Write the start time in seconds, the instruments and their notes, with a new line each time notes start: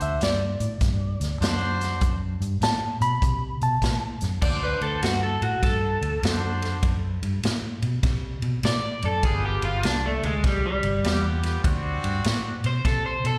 Already playing: horn section D4 F#4 C5
0.00 fingered electric bass D2, electric slide guitar E5, closed hi-hat
0.21 fingered electric bass G2, electric slide guitar D5, snare, closed hi-hat
0.60 fingered electric bass A2, closed hi-hat
0.81 fingered electric bass G2, kick, snare, closed hi-hat
1.20 fingered electric bass D2, snare, closed hi-hat
1.40 fingered electric bass F#2, horn section D4 F#4 C5, snare, closed hi-hat
1.81 snare, closed hi-hat
2.01 fingered electric bass F#2, kick, closed hi-hat
2.41 fingered electric bass G2, closed hi-hat
2.61 fingered electric bass A2, electric slide guitar A5, snare, closed hi-hat
3.01 fingered electric bass B2, electric slide guitar B5, closed hi-hat
3.22 fingered electric bass C3, kick, closed hi-hat
3.61 fingered electric bass B2, electric slide guitar A5, closed hi-hat
3.82 fingered electric bass A2, kick, snare, closed hi-hat
4.21 fingered electric bass F#2, snare, closed hi-hat
4.41 fingered electric bass D2, horn section D4 F#4 C5, clean electric guitar D5, kick, crash
4.63 clean electric guitar B4
4.81 fingered electric bass D2, clean electric guitar A4, ride
5.02 fingered electric bass G2, clean electric guitar F#4, snare, ride
5.23 clean electric guitar A4
5.42 fingered electric bass A2, clean electric guitar F#4, ride
5.63 fingered electric bass G2, clean electric guitar A4, kick, snare, ride
6.01 fingered electric bass D2, ride
6.22 fingered electric bass F#2, horn section D4 F#4 C5, snare, ride
6.62 snare, ride
6.83 fingered electric bass F#2, kick, ride
7.23 fingered electric bass G2, ride
7.43 fingered electric bass A2, snare, ride
7.82 fingered electric bass B2, ride
8.03 fingered electric bass C3, kick, snare, ride
8.42 fingered electric bass B2, ride
8.63 fingered electric bass A2, clean electric guitar D5, snare, ride
9.02 fingered electric bass F#2, clean electric guitar A4, ride
9.23 fingered electric bass G1, horn section B3 F4 G4, clean electric guitar G#4, kick, ride
9.46 clean electric guitar G4
9.62 fingered electric bass G1, clean electric guitar F4, ride
9.83 fingered electric bass C2, clean electric guitar D4, snare, ride
10.06 clean electric guitar A3
10.23 fingered electric bass D2, clean electric guitar G#3, ride
10.44 fingered electric bass C2, clean electric guitar G3, kick, snare, ride
10.66 clean electric guitar G3
10.82 fingered electric bass G1, ride
11.03 fingered electric bass E2, horn section B3 F4 G4, snare, ride
11.43 snare, ride
11.63 fingered electric bass D2, horn section C4 D4 F#4, kick, ride
12.04 fingered electric bass G2, ride
12.24 fingered electric bass A2, snare, ride
12.64 fingered electric bass B2, clean electric guitar C5, ride
12.85 fingered electric bass C3, clean electric guitar A4, kick, snare, ride
13.06 clean electric guitar C5
13.24 fingered electric bass B2, clean electric guitar A4, ride